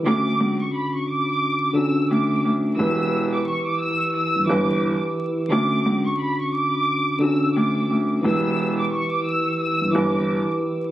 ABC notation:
X:1
M:4/4
L:1/16
Q:"Swing 16ths" 1/4=88
K:Edor
V:1 name="Violin section"
d'3 c' b c' d'4 e'2 d'2 z2 | e'3 d' c' d' e'2 e'2 d'3 z3 | d'3 c' b c' d'4 e'2 d'2 z2 | e'3 d' c' d' e'2 e'2 d'3 z3 |]
V:2 name="Tine electric piano"
[D,CDF]6 z4 [D,CDF]4 z2 | [E,EGB]6 z4 [E,EGB]4 z2 | [D,CDF]6 z4 [D,CDF]4 z2 | [E,EGB]6 z4 [E,EGB]4 z2 |]
V:3 name="Grand piano" clef=bass
D,,2 C,, z8 z D,,2 D,,2 | E,,,4 z4 z G,,, G,,,3 z3 | D,,2 C,, z8 z D,,2 D,,2 | E,,,4 z4 z G,,, G,,,3 z3 |]